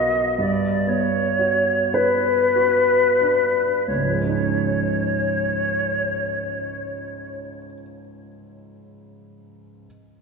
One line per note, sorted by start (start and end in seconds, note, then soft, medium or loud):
0.00 0.33 B1 soft
0.00 0.40 B3 soft
0.00 0.40 F#4 soft
0.00 0.19 A#4 soft
0.00 0.40 B4 soft
0.00 0.38 D#5 medium
0.38 3.83 G2 soft
0.38 0.90 D5 medium
0.87 1.71 B3 soft
0.87 1.95 C#5 medium
1.39 2.29 F#4 soft
1.94 3.86 B4 medium
1.94 2.94 B4 soft
2.56 3.62 F#4 soft
3.21 3.87 D4 soft
3.86 7.40 C#2 soft
3.86 7.38 C#5 medium
3.96 7.48 G#2 soft
4.04 7.56 F3 soft
4.13 7.65 G#3 soft
4.21 7.73 C#4 soft
4.29 7.81 D#4 soft